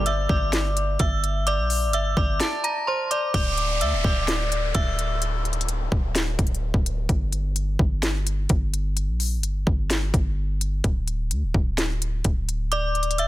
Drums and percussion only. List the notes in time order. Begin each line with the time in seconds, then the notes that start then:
0.06 closed hi-hat
0.29 kick
0.53 snare, closed hi-hat
0.77 closed hi-hat
0.99 kick, closed hi-hat
1.24 closed hi-hat
1.47 closed hi-hat
1.70 open hi-hat
1.93 closed hi-hat
2.17 kick
2.40 snare, closed hi-hat
2.64 closed hi-hat
3.11 closed hi-hat
3.34 kick, closed hi-hat
3.58 closed hi-hat
3.81 closed hi-hat
4.04 kick
4.28 snare, closed hi-hat
4.52 closed hi-hat
4.75 kick, closed hi-hat
4.99 closed hi-hat
5.22 closed hi-hat
5.45 closed hi-hat
5.53 closed hi-hat
5.61 closed hi-hat
5.68 closed hi-hat
5.92 kick
6.15 snare, closed hi-hat
6.39 kick, closed hi-hat
6.47 closed hi-hat
6.55 closed hi-hat
6.74 kick
6.86 closed hi-hat
7.09 kick, closed hi-hat
7.33 closed hi-hat
7.56 closed hi-hat
7.79 kick
8.03 snare, closed hi-hat
8.27 closed hi-hat
8.49 kick, closed hi-hat
8.74 closed hi-hat
8.97 closed hi-hat
9.20 open hi-hat
9.43 closed hi-hat
9.67 kick
9.90 snare, closed hi-hat
10.14 kick, closed hi-hat
10.61 closed hi-hat
10.84 kick, closed hi-hat
11.08 closed hi-hat
11.31 closed hi-hat
11.54 kick
11.78 snare, closed hi-hat
12.02 closed hi-hat
12.24 kick, closed hi-hat
12.49 closed hi-hat
12.72 closed hi-hat
12.95 closed hi-hat
13.03 closed hi-hat
13.11 closed hi-hat
13.18 closed hi-hat